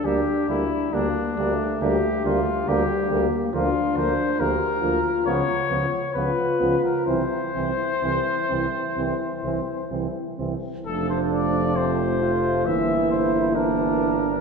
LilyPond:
<<
  \new Staff \with { instrumentName = "Trumpet" } { \time 4/4 \key g \dorian \tempo 4 = 67 g'8 e'8 d'4 g'8 f'8 g'8. r16 | \key f \major f'8 c''8 bes'4 des''4 ces''8. bes'16 | c''2. r4 | a'16 c''16 d''8 c''4 e''8 c''8 bes'4 | }
  \new Staff \with { instrumentName = "French horn" } { \time 4/4 \key g \dorian d'4 bes8 a4. g8 bes8 | \key f \major d'4 g'8 f'4 r8 f'4 | e'2.~ e'8 r8 | a2 bes2 | }
  \new Staff \with { instrumentName = "Flugelhorn" } { \time 4/4 \key g \dorian bes8 bes8 bes8 bes8 bes8 bes8 bes8 bes8 | \key f \major bes8 bes8 bes8 bes8 ces'8 ces'8 ces'8 ces'8 | c'8 c'8 c'8 c'8 c'8 c'8 c'8 c'8 | d'4 c'8 f'8 e'4 d'4 | }
  \new Staff \with { instrumentName = "Trombone" } { \clef bass \time 4/4 \key g \dorian g8 g8 g8 g8 g8 g8 g8 g8 | \key f \major f8 f8 f8 f8 f8 f8 f8 f8 | e8 e8 e8 e8 e8 e8 e8 e8 | f2 e2 | }
  \new Staff \with { instrumentName = "Bass trombone" } { \clef bass \time 4/4 \key g \dorian d,8 d,8 d,8 d,8 d,8 d,8 d,8 d,8 | \key f \major d,8 d,8 d,8 d,8 des,8 des,8 des,8 des,8 | c,8 c,8 c,8 c,8 c,8 c,8 c,8 c,8 | f,,2 g,,2 | }
>>